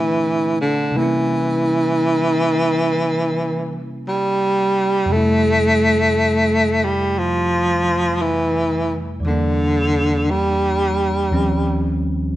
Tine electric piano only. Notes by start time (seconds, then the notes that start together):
Already playing: A#2 D3 A3 C4 D4 E4
0.91 C3 G3
0.97 A#3 C#4
1.02 E4
5.06 F2 C3
5.12 G3 A3
5.17 E4
9.20 E2 E3
9.26 G3 A#3
9.31 D4
11.31 D#2 D#3 F3 G3 C4 C#4